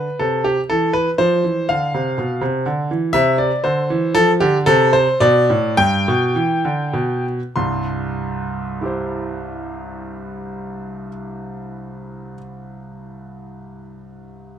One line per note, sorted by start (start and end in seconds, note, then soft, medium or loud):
0.00 0.20 B4 medium
0.19 0.56 C3 medium
0.19 0.45 A4 medium
0.44 0.59 G4 medium
0.70 1.06 E3 medium
0.70 0.92 A4 loud
0.93 1.09 B4 loud
1.18 1.43 F3 medium
1.18 1.69 C5 loud
1.44 1.68 E3 medium
1.69 1.93 D3 medium
1.69 2.42 F5 loud
1.94 2.17 C3 medium
2.18 2.41 B2 medium
2.41 2.65 C3 medium
2.66 2.89 D3 medium
2.91 3.14 E3 medium
3.13 3.50 C3 medium
3.13 3.36 E5 loud
3.38 3.63 D5 medium
3.64 3.88 D3 medium
3.64 4.15 C5 loud
3.90 4.14 E3 medium
4.15 4.39 F3 medium
4.15 4.30 A4 loud
4.40 4.66 D3 medium
4.40 4.56 G4 loud
4.66 5.06 C3 loud
4.66 4.93 A4 loud
4.93 5.17 C5 loud
5.20 5.48 B2 loud
5.20 5.74 D5 loud
5.50 5.77 A2 medium
5.77 6.05 G2 medium
5.77 7.25 G5 loud
6.08 6.34 B2 loud
6.36 6.63 E3 medium
6.65 6.93 D3 medium
6.93 7.39 B2 medium
7.56 11.08 C2 medium
7.56 11.08 G2 medium
7.56 11.07 C6 medium
8.81 12.33 E4 medium
8.81 12.35 G4 medium
8.86 12.37 C5 medium